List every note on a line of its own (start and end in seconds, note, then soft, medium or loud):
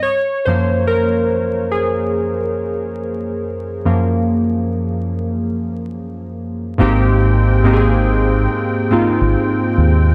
0.03 0.47 C#5 loud
0.45 1.08 F#2 soft
0.45 1.08 F3 soft
0.45 1.09 A#3 medium
0.45 0.85 C5 medium
0.87 1.75 A#4 medium
1.72 5.91 G#4 medium
3.85 4.46 F#2 soft
3.85 4.47 F3 soft
3.85 4.47 A#3 medium
6.78 8.46 G#1 loud
6.78 7.36 G#2 medium
6.78 10.15 G#3 medium
6.78 7.36 A#3 medium
6.78 7.37 C4 medium
6.78 10.15 C4 medium
6.78 7.37 D#4 medium
6.78 7.37 G4 loud
6.78 10.15 G5 medium
7.64 8.45 G#2 medium
7.64 8.46 A#3 medium
7.64 8.46 C4 medium
7.64 8.47 D#4 medium
7.64 7.75 G4 medium
7.73 8.50 G#4 loud
8.90 9.72 G#2 medium
8.90 9.72 A#3 medium
8.90 9.73 C4 medium
8.90 9.73 D#4 medium
8.90 9.73 F4 medium
9.21 9.34 G#1 medium
9.78 10.15 D#2 medium